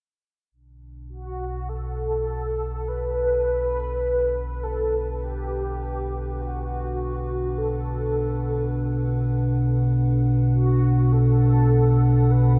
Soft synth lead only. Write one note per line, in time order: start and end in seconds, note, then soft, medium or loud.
1.10 1.70 F#4 medium
1.69 2.89 A4 loud
2.88 4.65 B4 loud
4.63 5.22 A4 medium
5.24 6.42 G4 loud
6.41 7.59 F#4 loud
7.58 9.35 A4 medium
10.51 11.14 F#4 medium
11.12 12.32 A4 loud
12.31 12.59 B4 loud